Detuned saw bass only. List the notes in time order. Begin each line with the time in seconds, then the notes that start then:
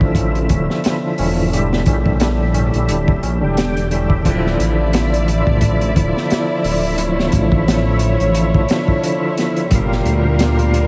0.01 A1
0.50 D1
1.19 E1
1.87 A#1
2.75 A#1
2.88 D1
3.23 A#1
3.43 E1
4.25 D1
4.59 A1
5.47 A1
5.96 D1
6.64 D1
7.33 A1
8.21 A1
9.71 G1
10.05 D2